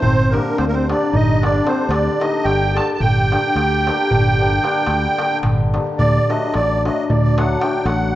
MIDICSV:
0, 0, Header, 1, 6, 480
1, 0, Start_track
1, 0, Key_signature, -2, "minor"
1, 0, Tempo, 542005
1, 22, Time_signature, 11, 3, 24, 8
1, 7219, End_track
2, 0, Start_track
2, 0, Title_t, "Accordion"
2, 0, Program_c, 0, 21
2, 11, Note_on_c, 0, 72, 110
2, 271, Note_on_c, 0, 70, 76
2, 301, Note_off_c, 0, 72, 0
2, 509, Note_off_c, 0, 70, 0
2, 509, Note_on_c, 0, 72, 94
2, 576, Note_off_c, 0, 72, 0
2, 603, Note_on_c, 0, 70, 86
2, 647, Note_on_c, 0, 72, 75
2, 663, Note_off_c, 0, 70, 0
2, 778, Note_off_c, 0, 72, 0
2, 803, Note_on_c, 0, 74, 73
2, 1015, Note_on_c, 0, 75, 91
2, 1021, Note_off_c, 0, 74, 0
2, 1268, Note_off_c, 0, 75, 0
2, 1275, Note_on_c, 0, 74, 86
2, 1470, Note_on_c, 0, 72, 83
2, 1481, Note_off_c, 0, 74, 0
2, 1682, Note_on_c, 0, 74, 78
2, 1683, Note_off_c, 0, 72, 0
2, 1946, Note_on_c, 0, 75, 81
2, 1963, Note_off_c, 0, 74, 0
2, 2164, Note_on_c, 0, 79, 111
2, 2172, Note_off_c, 0, 75, 0
2, 2440, Note_on_c, 0, 81, 95
2, 2450, Note_off_c, 0, 79, 0
2, 2588, Note_off_c, 0, 81, 0
2, 2601, Note_on_c, 0, 81, 59
2, 2660, Note_off_c, 0, 81, 0
2, 2661, Note_on_c, 0, 79, 116
2, 4772, Note_off_c, 0, 79, 0
2, 5301, Note_on_c, 0, 74, 105
2, 5571, Note_on_c, 0, 75, 79
2, 5585, Note_off_c, 0, 74, 0
2, 5798, Note_off_c, 0, 75, 0
2, 5801, Note_on_c, 0, 74, 98
2, 6054, Note_off_c, 0, 74, 0
2, 6077, Note_on_c, 0, 75, 77
2, 6279, Note_on_c, 0, 74, 84
2, 6297, Note_off_c, 0, 75, 0
2, 6535, Note_on_c, 0, 78, 80
2, 6539, Note_off_c, 0, 74, 0
2, 6732, Note_on_c, 0, 79, 86
2, 6750, Note_off_c, 0, 78, 0
2, 6952, Note_on_c, 0, 78, 91
2, 6953, Note_off_c, 0, 79, 0
2, 7218, Note_off_c, 0, 78, 0
2, 7219, End_track
3, 0, Start_track
3, 0, Title_t, "Clarinet"
3, 0, Program_c, 1, 71
3, 16, Note_on_c, 1, 60, 74
3, 276, Note_off_c, 1, 60, 0
3, 292, Note_on_c, 1, 58, 57
3, 497, Note_off_c, 1, 58, 0
3, 506, Note_on_c, 1, 60, 82
3, 575, Note_off_c, 1, 60, 0
3, 591, Note_on_c, 1, 58, 64
3, 643, Note_off_c, 1, 58, 0
3, 648, Note_on_c, 1, 60, 80
3, 767, Note_off_c, 1, 60, 0
3, 773, Note_on_c, 1, 62, 61
3, 984, Note_off_c, 1, 62, 0
3, 990, Note_on_c, 1, 63, 88
3, 1230, Note_off_c, 1, 63, 0
3, 1241, Note_on_c, 1, 62, 86
3, 1443, Note_off_c, 1, 62, 0
3, 1456, Note_on_c, 1, 60, 74
3, 1655, Note_off_c, 1, 60, 0
3, 1669, Note_on_c, 1, 62, 65
3, 1929, Note_off_c, 1, 62, 0
3, 1952, Note_on_c, 1, 63, 65
3, 2148, Note_off_c, 1, 63, 0
3, 2153, Note_on_c, 1, 67, 84
3, 2417, Note_off_c, 1, 67, 0
3, 2421, Note_on_c, 1, 69, 79
3, 2580, Note_off_c, 1, 69, 0
3, 2601, Note_on_c, 1, 69, 61
3, 2640, Note_off_c, 1, 69, 0
3, 2645, Note_on_c, 1, 67, 83
3, 4764, Note_off_c, 1, 67, 0
3, 7219, End_track
4, 0, Start_track
4, 0, Title_t, "Hammered dulcimer"
4, 0, Program_c, 2, 15
4, 286, Note_on_c, 2, 50, 70
4, 295, Note_on_c, 2, 55, 58
4, 297, Note_on_c, 2, 58, 59
4, 302, Note_on_c, 2, 62, 76
4, 427, Note_off_c, 2, 58, 0
4, 428, Note_off_c, 2, 62, 0
4, 783, Note_off_c, 2, 50, 0
4, 786, Note_off_c, 2, 55, 0
4, 793, Note_on_c, 2, 50, 67
4, 797, Note_on_c, 2, 55, 65
4, 805, Note_on_c, 2, 58, 58
4, 808, Note_on_c, 2, 62, 73
4, 927, Note_off_c, 2, 58, 0
4, 929, Note_off_c, 2, 62, 0
4, 1250, Note_off_c, 2, 50, 0
4, 1251, Note_off_c, 2, 55, 0
4, 1260, Note_on_c, 2, 50, 59
4, 1262, Note_on_c, 2, 55, 66
4, 1268, Note_on_c, 2, 58, 62
4, 1273, Note_on_c, 2, 62, 68
4, 1387, Note_off_c, 2, 58, 0
4, 1389, Note_off_c, 2, 62, 0
4, 1440, Note_off_c, 2, 50, 0
4, 1451, Note_off_c, 2, 55, 0
4, 1451, Note_on_c, 2, 50, 67
4, 1462, Note_on_c, 2, 55, 61
4, 1467, Note_on_c, 2, 58, 60
4, 1470, Note_on_c, 2, 62, 72
4, 1591, Note_off_c, 2, 58, 0
4, 1592, Note_off_c, 2, 62, 0
4, 1932, Note_off_c, 2, 50, 0
4, 1941, Note_off_c, 2, 55, 0
4, 1943, Note_on_c, 2, 50, 64
4, 1952, Note_on_c, 2, 55, 46
4, 1959, Note_on_c, 2, 58, 62
4, 1962, Note_on_c, 2, 62, 74
4, 2085, Note_off_c, 2, 58, 0
4, 2086, Note_off_c, 2, 62, 0
4, 2430, Note_off_c, 2, 50, 0
4, 2441, Note_off_c, 2, 55, 0
4, 2441, Note_on_c, 2, 50, 49
4, 2451, Note_on_c, 2, 55, 46
4, 2453, Note_on_c, 2, 58, 39
4, 2460, Note_on_c, 2, 62, 64
4, 2578, Note_off_c, 2, 58, 0
4, 2582, Note_off_c, 2, 62, 0
4, 2706, Note_off_c, 2, 50, 0
4, 2706, Note_off_c, 2, 55, 0
4, 2934, Note_on_c, 2, 50, 60
4, 2938, Note_on_c, 2, 55, 57
4, 2942, Note_on_c, 2, 58, 59
4, 2949, Note_on_c, 2, 62, 70
4, 3069, Note_off_c, 2, 58, 0
4, 3073, Note_off_c, 2, 62, 0
4, 3415, Note_off_c, 2, 50, 0
4, 3415, Note_off_c, 2, 55, 0
4, 3425, Note_on_c, 2, 55, 64
4, 3426, Note_on_c, 2, 50, 80
4, 3435, Note_on_c, 2, 58, 72
4, 3443, Note_on_c, 2, 62, 91
4, 3562, Note_off_c, 2, 58, 0
4, 3566, Note_off_c, 2, 62, 0
4, 3877, Note_off_c, 2, 50, 0
4, 3882, Note_off_c, 2, 55, 0
4, 3888, Note_on_c, 2, 50, 76
4, 3893, Note_on_c, 2, 55, 64
4, 3897, Note_on_c, 2, 58, 53
4, 3907, Note_on_c, 2, 62, 80
4, 4021, Note_off_c, 2, 58, 0
4, 4026, Note_off_c, 2, 62, 0
4, 4088, Note_off_c, 2, 50, 0
4, 4091, Note_off_c, 2, 55, 0
4, 4098, Note_on_c, 2, 50, 74
4, 4102, Note_on_c, 2, 55, 65
4, 4111, Note_on_c, 2, 58, 81
4, 4115, Note_on_c, 2, 62, 97
4, 4232, Note_off_c, 2, 58, 0
4, 4234, Note_off_c, 2, 62, 0
4, 4578, Note_off_c, 2, 50, 0
4, 4583, Note_off_c, 2, 55, 0
4, 4588, Note_on_c, 2, 50, 64
4, 4594, Note_on_c, 2, 55, 55
4, 4597, Note_on_c, 2, 58, 69
4, 4601, Note_on_c, 2, 62, 64
4, 4723, Note_off_c, 2, 58, 0
4, 4725, Note_off_c, 2, 62, 0
4, 5073, Note_off_c, 2, 50, 0
4, 5076, Note_off_c, 2, 55, 0
4, 5084, Note_on_c, 2, 50, 63
4, 5087, Note_on_c, 2, 55, 52
4, 5093, Note_on_c, 2, 58, 60
4, 5098, Note_on_c, 2, 62, 64
4, 5217, Note_off_c, 2, 58, 0
4, 5220, Note_off_c, 2, 62, 0
4, 5345, Note_off_c, 2, 50, 0
4, 5345, Note_off_c, 2, 55, 0
4, 5573, Note_on_c, 2, 50, 68
4, 5576, Note_on_c, 2, 54, 57
4, 5583, Note_on_c, 2, 57, 59
4, 5590, Note_on_c, 2, 62, 75
4, 5709, Note_off_c, 2, 57, 0
4, 5713, Note_off_c, 2, 62, 0
4, 6052, Note_off_c, 2, 50, 0
4, 6058, Note_off_c, 2, 54, 0
4, 6062, Note_on_c, 2, 50, 65
4, 6069, Note_on_c, 2, 54, 57
4, 6074, Note_on_c, 2, 57, 60
4, 6081, Note_on_c, 2, 62, 72
4, 6201, Note_off_c, 2, 57, 0
4, 6205, Note_off_c, 2, 62, 0
4, 6525, Note_off_c, 2, 50, 0
4, 6529, Note_off_c, 2, 54, 0
4, 6535, Note_on_c, 2, 50, 56
4, 6539, Note_on_c, 2, 54, 57
4, 6543, Note_on_c, 2, 57, 53
4, 6546, Note_on_c, 2, 62, 77
4, 6664, Note_off_c, 2, 57, 0
4, 6665, Note_off_c, 2, 62, 0
4, 6740, Note_off_c, 2, 50, 0
4, 6744, Note_off_c, 2, 54, 0
4, 6750, Note_on_c, 2, 50, 67
4, 6755, Note_on_c, 2, 54, 62
4, 6760, Note_on_c, 2, 57, 63
4, 6763, Note_on_c, 2, 62, 74
4, 6876, Note_off_c, 2, 57, 0
4, 6878, Note_off_c, 2, 62, 0
4, 7212, Note_off_c, 2, 50, 0
4, 7219, Note_off_c, 2, 54, 0
4, 7219, End_track
5, 0, Start_track
5, 0, Title_t, "Fingered electric bass"
5, 0, Program_c, 3, 33
5, 29, Note_on_c, 3, 31, 96
5, 323, Note_off_c, 3, 31, 0
5, 521, Note_on_c, 3, 38, 79
5, 815, Note_off_c, 3, 38, 0
5, 1002, Note_on_c, 3, 31, 90
5, 1404, Note_off_c, 3, 31, 0
5, 1670, Note_on_c, 3, 38, 100
5, 1837, Note_off_c, 3, 38, 0
5, 2170, Note_on_c, 3, 31, 91
5, 2465, Note_off_c, 3, 31, 0
5, 2659, Note_on_c, 3, 31, 90
5, 2956, Note_off_c, 3, 31, 0
5, 3148, Note_on_c, 3, 38, 85
5, 3446, Note_off_c, 3, 38, 0
5, 3650, Note_on_c, 3, 31, 88
5, 4049, Note_off_c, 3, 31, 0
5, 4314, Note_on_c, 3, 38, 88
5, 4480, Note_off_c, 3, 38, 0
5, 4810, Note_on_c, 3, 31, 81
5, 5105, Note_off_c, 3, 31, 0
5, 5311, Note_on_c, 3, 38, 83
5, 5474, Note_off_c, 3, 38, 0
5, 5804, Note_on_c, 3, 33, 90
5, 6097, Note_off_c, 3, 33, 0
5, 6286, Note_on_c, 3, 38, 82
5, 6686, Note_off_c, 3, 38, 0
5, 6954, Note_on_c, 3, 33, 113
5, 7219, Note_off_c, 3, 33, 0
5, 7219, End_track
6, 0, Start_track
6, 0, Title_t, "Darbuka"
6, 21, Note_on_c, 9, 64, 88
6, 110, Note_off_c, 9, 64, 0
6, 295, Note_on_c, 9, 63, 50
6, 383, Note_off_c, 9, 63, 0
6, 411, Note_on_c, 9, 63, 23
6, 500, Note_off_c, 9, 63, 0
6, 517, Note_on_c, 9, 63, 59
6, 606, Note_off_c, 9, 63, 0
6, 792, Note_on_c, 9, 63, 65
6, 880, Note_off_c, 9, 63, 0
6, 1016, Note_on_c, 9, 64, 72
6, 1104, Note_off_c, 9, 64, 0
6, 1267, Note_on_c, 9, 63, 73
6, 1356, Note_off_c, 9, 63, 0
6, 1372, Note_on_c, 9, 63, 25
6, 1460, Note_off_c, 9, 63, 0
6, 1474, Note_on_c, 9, 63, 66
6, 1562, Note_off_c, 9, 63, 0
6, 1584, Note_on_c, 9, 63, 26
6, 1672, Note_off_c, 9, 63, 0
6, 1686, Note_on_c, 9, 63, 78
6, 1775, Note_off_c, 9, 63, 0
6, 1958, Note_on_c, 9, 63, 64
6, 2047, Note_off_c, 9, 63, 0
6, 2177, Note_on_c, 9, 63, 59
6, 2266, Note_off_c, 9, 63, 0
6, 2449, Note_on_c, 9, 63, 74
6, 2538, Note_off_c, 9, 63, 0
6, 2667, Note_on_c, 9, 64, 82
6, 2756, Note_off_c, 9, 64, 0
6, 2804, Note_on_c, 9, 63, 29
6, 2892, Note_off_c, 9, 63, 0
6, 2941, Note_on_c, 9, 63, 60
6, 3030, Note_off_c, 9, 63, 0
6, 3049, Note_on_c, 9, 63, 31
6, 3137, Note_off_c, 9, 63, 0
6, 3155, Note_on_c, 9, 63, 59
6, 3244, Note_off_c, 9, 63, 0
6, 3293, Note_on_c, 9, 63, 28
6, 3381, Note_off_c, 9, 63, 0
6, 3427, Note_on_c, 9, 63, 60
6, 3515, Note_off_c, 9, 63, 0
6, 3536, Note_on_c, 9, 63, 21
6, 3625, Note_off_c, 9, 63, 0
6, 3640, Note_on_c, 9, 64, 86
6, 3728, Note_off_c, 9, 64, 0
6, 4002, Note_on_c, 9, 63, 26
6, 4091, Note_off_c, 9, 63, 0
6, 4107, Note_on_c, 9, 63, 61
6, 4196, Note_off_c, 9, 63, 0
6, 4308, Note_on_c, 9, 63, 74
6, 4396, Note_off_c, 9, 63, 0
6, 4591, Note_on_c, 9, 63, 72
6, 4680, Note_off_c, 9, 63, 0
6, 4702, Note_on_c, 9, 63, 28
6, 4790, Note_off_c, 9, 63, 0
6, 4808, Note_on_c, 9, 63, 74
6, 4808, Note_on_c, 9, 64, 68
6, 4897, Note_off_c, 9, 63, 0
6, 4897, Note_off_c, 9, 64, 0
6, 4947, Note_on_c, 9, 63, 23
6, 5035, Note_off_c, 9, 63, 0
6, 5082, Note_on_c, 9, 63, 58
6, 5171, Note_off_c, 9, 63, 0
6, 5199, Note_on_c, 9, 63, 25
6, 5287, Note_off_c, 9, 63, 0
6, 5305, Note_on_c, 9, 64, 82
6, 5394, Note_off_c, 9, 64, 0
6, 5580, Note_on_c, 9, 63, 61
6, 5669, Note_off_c, 9, 63, 0
6, 5790, Note_on_c, 9, 63, 67
6, 5879, Note_off_c, 9, 63, 0
6, 6070, Note_on_c, 9, 63, 60
6, 6159, Note_off_c, 9, 63, 0
6, 6288, Note_on_c, 9, 64, 104
6, 6376, Note_off_c, 9, 64, 0
6, 6534, Note_on_c, 9, 63, 83
6, 6623, Note_off_c, 9, 63, 0
6, 6639, Note_on_c, 9, 63, 24
6, 6728, Note_off_c, 9, 63, 0
6, 6743, Note_on_c, 9, 63, 69
6, 6831, Note_off_c, 9, 63, 0
6, 6959, Note_on_c, 9, 63, 74
6, 7048, Note_off_c, 9, 63, 0
6, 7219, End_track
0, 0, End_of_file